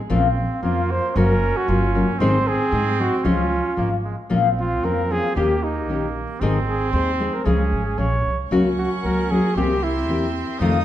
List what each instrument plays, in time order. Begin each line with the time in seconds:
0.09 upright bass A#1, nylon-string guitar A#2 F3 C4 C#4 F4, trumpet C4
0.63 upright bass F2, nylon-string guitar F3 C4 C#4 F4, trumpet A#3 F4
0.91 trumpet C5
1.10 trumpet C5
1.15 upright bass F#1, nylon-string guitar F#2 C#3 F#3 A#3 C#4 F#4, trumpet C#4 A#4
1.57 trumpet F#4
1.68 upright bass G1, nylon-string guitar F#3 A#3 C#4 F#4, trumpet F4
1.95 nylon-string guitar F#3 A#3 C#4 F#4
2.19 upright bass G#1, nylon-string guitar G#2 D#3 G#3 C4 D#4 G#4, trumpet C4 C5
2.47 trumpet G#4
2.72 upright bass G#2, nylon-string guitar G#3 C4 D#4 G#4
3.00 nylon-string guitar G#3 C4 D#4 G#4, trumpet F#4
3.18 trumpet F#4
3.24 upright bass C#2, nylon-string guitar C#3 F3 G#3 C#4 F4, trumpet C#4 F4
3.77 upright bass G#1, nylon-string guitar F3 G#3 C#4 F4, trumpet A#3
4.05 trumpet G#3
4.29 upright bass A#1, nylon-string guitar A#2 F3 A#3 C#4 F4, trumpet C4
4.59 trumpet F4
4.83 upright bass F2, nylon-string guitar F3 A#3 C#4 F4, trumpet A#4
5.10 nylon-string guitar F3 A#3 C#4 F4, trumpet G#4
5.36 upright bass D#2, nylon-string guitar D#3 A#3 C#4 G4, trumpet A#3 G4
5.63 trumpet D#4
5.89 upright bass A#1, nylon-string guitar D#3 A#3 C#4 G4
6.40 upright bass G#1, nylon-string guitar G#2 D#3 G#3 C4 D#4 G#4, trumpet C4
6.69 trumpet G#4
6.93 upright bass D#2, nylon-string guitar G#3 C4 D#4 G#4, trumpet C5
7.20 nylon-string guitar G#3 C4 D#4 G#4
7.34 trumpet A#4
7.44 upright bass C#2, nylon-string guitar C#3 F3 G#3 C#4 G#4, trumpet C#4 G#4
7.72 upright bass G#1
7.85 trumpet G#4
7.98 upright bass A#1, nylon-string guitar F3 G#3 C#4 G#4, trumpet C#5
8.26 upright bass C2
8.51 upright bass C#2, nylon-string guitar C#3 F#3 A#3 C#4 F#4, trumpet C#4, violin section A#4 F#5 C#6
8.78 trumpet F#4
9.04 upright bass C#2, nylon-string guitar F#3 A#3 C#4 F#4, trumpet A#4
9.31 nylon-string guitar F#3 A#3 C#4 F#4, trumpet G#4
9.55 upright bass C2, nylon-string guitar C3 E3 A#3 C4 G4, trumpet C4 G4, violin section E5 C6
9.83 trumpet E4
10.08 upright bass E2, nylon-string guitar E3 A#3 C4 G4
10.59 upright bass F2, nylon-string guitar F2 C3 D#3 A3 C4 F4, trumpet D#4, violin section A4 F5 D#6